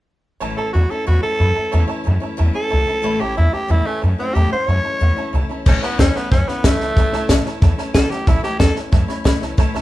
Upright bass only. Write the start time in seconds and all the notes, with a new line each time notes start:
0.41 A1
0.58 A1
0.75 E2
0.91 muted upright bass stroke
1.08 E2
1.40 F#2
1.57 muted upright bass stroke
1.74 E2
2.07 F#2
2.39 E2
2.55 muted upright bass stroke
2.73 C#2
2.90 muted upright bass stroke
3.05 A1
3.22 A1
3.38 E2
3.70 E2
3.87 muted upright bass stroke
4.03 F#2
4.36 E2
4.52 muted upright bass stroke
4.68 F#2
5.01 E2
5.17 muted upright bass stroke
5.33 C#2
5.66 A1
5.99 E2
6.15 muted upright bass stroke
6.32 F#2
6.48 muted upright bass stroke
6.64 F#2
6.80 C#2
6.97 A1
7.13 C#2
7.29 C#2
7.46 muted upright bass stroke
7.62 E2
7.78 muted upright bass stroke
7.95 C#2
8.10 muted upright bass stroke
8.27 A1
8.60 E2
8.92 F#2
9.09 muted upright bass stroke
9.26 F#2
9.42 C#2
9.74 C#2